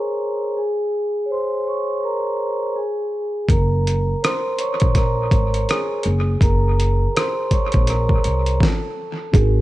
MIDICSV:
0, 0, Header, 1, 5, 480
1, 0, Start_track
1, 0, Tempo, 731707
1, 367, Time_signature, 4, 2, 24, 8
1, 6307, End_track
2, 0, Start_track
2, 0, Title_t, "Vibraphone"
2, 0, Program_c, 0, 11
2, 0, Control_c, 0, 64, 127
2, 0, Note_on_c, 0, 68, 77
2, 0, Note_on_c, 0, 70, 87
2, 0, Note_on_c, 0, 72, 89
2, 0, Note_on_c, 0, 73, 92
2, 0, Note_on_c, 0, 80, 59
2, 0, Note_on_c, 0, 82, 69
2, 0, Note_on_c, 0, 84, 65
2, 0, Note_on_c, 0, 85, 69
2, 253, Note_off_c, 0, 68, 0
2, 257, Note_off_c, 0, 80, 0
2, 373, Note_on_c, 0, 68, 84
2, 375, Note_off_c, 0, 82, 0
2, 375, Control_c, 0, 64, 0
2, 377, Note_off_c, 0, 85, 0
2, 378, Note_off_c, 0, 70, 0
2, 378, Note_off_c, 0, 73, 0
2, 380, Note_off_c, 0, 72, 0
2, 380, Note_off_c, 0, 84, 0
2, 382, Note_on_c, 0, 80, 66
2, 473, Control_c, 0, 64, 127
2, 793, Note_off_c, 0, 80, 0
2, 824, Note_on_c, 0, 73, 70
2, 828, Note_off_c, 0, 68, 0
2, 853, Note_off_c, 0, 73, 0
2, 856, Note_on_c, 0, 72, 91
2, 865, Note_on_c, 0, 84, 66
2, 1047, Note_off_c, 0, 84, 0
2, 1056, Note_off_c, 0, 72, 0
2, 1064, Note_on_c, 0, 72, 69
2, 1093, Note_off_c, 0, 72, 0
2, 1095, Note_on_c, 0, 73, 85
2, 1103, Note_on_c, 0, 85, 68
2, 1319, Note_off_c, 0, 85, 0
2, 1330, Note_on_c, 0, 70, 83
2, 1338, Note_off_c, 0, 73, 0
2, 1341, Note_on_c, 0, 82, 68
2, 1788, Note_off_c, 0, 82, 0
2, 1810, Note_on_c, 0, 68, 78
2, 1814, Control_c, 0, 64, 0
2, 1820, Note_on_c, 0, 80, 59
2, 1823, Note_off_c, 0, 70, 0
2, 1935, Control_c, 0, 64, 127
2, 2170, Note_off_c, 0, 68, 0
2, 2175, Note_off_c, 0, 80, 0
2, 2294, Note_on_c, 0, 70, 85
2, 2295, Control_c, 0, 64, 0
2, 2305, Note_on_c, 0, 82, 67
2, 2393, Control_c, 0, 64, 127
2, 2744, Note_off_c, 0, 70, 0
2, 2749, Note_off_c, 0, 82, 0
2, 2772, Note_on_c, 0, 72, 81
2, 2784, Note_on_c, 0, 84, 68
2, 2879, Note_off_c, 0, 72, 0
2, 2888, Note_off_c, 0, 84, 0
2, 3012, Note_on_c, 0, 73, 87
2, 3020, Note_on_c, 0, 85, 70
2, 3233, Note_off_c, 0, 73, 0
2, 3237, Note_off_c, 0, 85, 0
2, 3252, Note_on_c, 0, 70, 83
2, 3262, Note_on_c, 0, 82, 65
2, 3703, Note_off_c, 0, 70, 0
2, 3708, Note_off_c, 0, 82, 0
2, 3730, Note_on_c, 0, 68, 76
2, 3740, Note_on_c, 0, 80, 55
2, 3974, Control_c, 0, 64, 0
2, 4090, Note_off_c, 0, 68, 0
2, 4095, Note_off_c, 0, 80, 0
2, 4106, Control_c, 0, 64, 127
2, 4209, Note_on_c, 0, 70, 82
2, 4216, Note_on_c, 0, 82, 66
2, 4665, Note_off_c, 0, 82, 0
2, 4692, Note_on_c, 0, 72, 79
2, 4699, Note_on_c, 0, 84, 65
2, 4702, Note_off_c, 0, 70, 0
2, 4916, Note_off_c, 0, 84, 0
2, 4930, Note_on_c, 0, 73, 81
2, 4936, Note_off_c, 0, 72, 0
2, 4936, Note_on_c, 0, 85, 69
2, 5037, Note_off_c, 0, 73, 0
2, 5042, Note_off_c, 0, 85, 0
2, 5168, Note_on_c, 0, 70, 82
2, 5177, Note_on_c, 0, 82, 62
2, 5625, Note_off_c, 0, 82, 0
2, 5651, Note_on_c, 0, 69, 68
2, 5655, Control_c, 0, 64, 0
2, 5662, Note_off_c, 0, 70, 0
2, 5765, Control_c, 0, 64, 127
2, 6011, Note_off_c, 0, 69, 0
2, 6112, Note_on_c, 0, 60, 69
2, 6126, Note_on_c, 0, 63, 63
2, 6135, Control_c, 0, 64, 0
2, 6140, Note_on_c, 0, 66, 63
2, 6153, Note_on_c, 0, 70, 76
2, 6267, Control_c, 0, 64, 127
2, 6307, Note_off_c, 0, 60, 0
2, 6307, Note_off_c, 0, 63, 0
2, 6307, Note_off_c, 0, 66, 0
2, 6307, Note_off_c, 0, 70, 0
2, 6307, End_track
3, 0, Start_track
3, 0, Title_t, "Felt piano"
3, 0, Program_c, 1, 0
3, 6121, Note_on_c, 1, 68, 93
3, 6307, Note_off_c, 1, 68, 0
3, 6307, End_track
4, 0, Start_track
4, 0, Title_t, "Upright bass"
4, 0, Program_c, 2, 32
4, 2289, Note_on_c, 2, 30, 95
4, 2712, Note_off_c, 2, 30, 0
4, 3163, Note_on_c, 2, 34, 82
4, 3452, Note_off_c, 2, 34, 0
4, 3489, Note_on_c, 2, 32, 78
4, 3700, Note_off_c, 2, 32, 0
4, 3973, Note_on_c, 2, 30, 91
4, 4182, Note_off_c, 2, 30, 0
4, 4207, Note_on_c, 2, 30, 97
4, 4630, Note_off_c, 2, 30, 0
4, 5082, Note_on_c, 2, 34, 82
4, 5372, Note_off_c, 2, 34, 0
4, 5412, Note_on_c, 2, 36, 75
4, 5622, Note_off_c, 2, 36, 0
4, 6128, Note_on_c, 2, 32, 113
4, 6307, Note_off_c, 2, 32, 0
4, 6307, End_track
5, 0, Start_track
5, 0, Title_t, "Drums"
5, 2287, Note_on_c, 9, 36, 103
5, 2294, Note_on_c, 9, 42, 68
5, 2352, Note_off_c, 9, 36, 0
5, 2360, Note_off_c, 9, 42, 0
5, 2540, Note_on_c, 9, 42, 59
5, 2606, Note_off_c, 9, 42, 0
5, 2781, Note_on_c, 9, 42, 72
5, 2785, Note_on_c, 9, 37, 108
5, 2847, Note_off_c, 9, 42, 0
5, 2851, Note_off_c, 9, 37, 0
5, 3008, Note_on_c, 9, 42, 67
5, 3073, Note_off_c, 9, 42, 0
5, 3148, Note_on_c, 9, 42, 45
5, 3160, Note_on_c, 9, 36, 88
5, 3213, Note_off_c, 9, 42, 0
5, 3225, Note_off_c, 9, 36, 0
5, 3246, Note_on_c, 9, 36, 84
5, 3246, Note_on_c, 9, 42, 80
5, 3265, Note_on_c, 9, 37, 36
5, 3312, Note_off_c, 9, 36, 0
5, 3312, Note_off_c, 9, 42, 0
5, 3330, Note_off_c, 9, 37, 0
5, 3486, Note_on_c, 9, 36, 94
5, 3489, Note_on_c, 9, 42, 58
5, 3551, Note_off_c, 9, 36, 0
5, 3555, Note_off_c, 9, 42, 0
5, 3635, Note_on_c, 9, 42, 49
5, 3700, Note_off_c, 9, 42, 0
5, 3732, Note_on_c, 9, 42, 60
5, 3744, Note_on_c, 9, 37, 92
5, 3798, Note_off_c, 9, 42, 0
5, 3809, Note_off_c, 9, 37, 0
5, 3958, Note_on_c, 9, 42, 59
5, 4023, Note_off_c, 9, 42, 0
5, 4204, Note_on_c, 9, 36, 99
5, 4210, Note_on_c, 9, 42, 69
5, 4270, Note_off_c, 9, 36, 0
5, 4276, Note_off_c, 9, 42, 0
5, 4459, Note_on_c, 9, 42, 63
5, 4524, Note_off_c, 9, 42, 0
5, 4700, Note_on_c, 9, 42, 72
5, 4704, Note_on_c, 9, 37, 109
5, 4766, Note_off_c, 9, 42, 0
5, 4770, Note_off_c, 9, 37, 0
5, 4926, Note_on_c, 9, 42, 63
5, 4927, Note_on_c, 9, 36, 78
5, 4992, Note_off_c, 9, 36, 0
5, 4992, Note_off_c, 9, 42, 0
5, 5064, Note_on_c, 9, 42, 46
5, 5078, Note_on_c, 9, 36, 84
5, 5129, Note_off_c, 9, 42, 0
5, 5144, Note_off_c, 9, 36, 0
5, 5164, Note_on_c, 9, 42, 80
5, 5183, Note_on_c, 9, 37, 35
5, 5230, Note_off_c, 9, 42, 0
5, 5248, Note_off_c, 9, 37, 0
5, 5308, Note_on_c, 9, 36, 79
5, 5374, Note_off_c, 9, 36, 0
5, 5407, Note_on_c, 9, 42, 62
5, 5472, Note_off_c, 9, 42, 0
5, 5552, Note_on_c, 9, 42, 47
5, 5617, Note_off_c, 9, 42, 0
5, 5644, Note_on_c, 9, 36, 90
5, 5661, Note_on_c, 9, 38, 79
5, 5710, Note_off_c, 9, 36, 0
5, 5727, Note_off_c, 9, 38, 0
5, 6124, Note_on_c, 9, 36, 109
5, 6131, Note_on_c, 9, 42, 78
5, 6190, Note_off_c, 9, 36, 0
5, 6196, Note_off_c, 9, 42, 0
5, 6307, End_track
0, 0, End_of_file